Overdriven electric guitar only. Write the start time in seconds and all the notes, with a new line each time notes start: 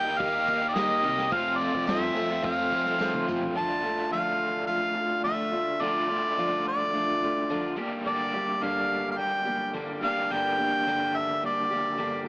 0.05 A#3 D#4 G4
0.33 A#3 D#4 G4
0.46 D#3 A#3 D#4 G4
0.61 A#3 D#4 G4
0.74 D#3 A#3 D#4 G4
1.03 D#3 A#3 D#4 G4
1.17 D#4 G4
1.21 A#3
1.31 F2 C3 F3 A3 C4 F4
1.59 F3 A3 C4 F4
1.74 F3 A3 C4 F4
1.87 F2 C3 F3 A3 C4 F4
2.02 F3 A3 C4 F4
2.30 F3 A3 C4 F4
2.57 F3 A3 C4 F4
2.72 F3 A3 C4 F4
2.86 F3 A3 C4 F4
2.99 F2 C3 F3 A3 C4 F4
3.27 F3 A3 C4 F4
3.42 F3 A3 C4 F4
3.55 D3 A3 D4 F4
5.80 D3 A3 D4
5.84 F4
7.77 G2 D3 G3 A#3 D4 G4
10.01 G2 D3 G3 A#3 D4
10.05 G4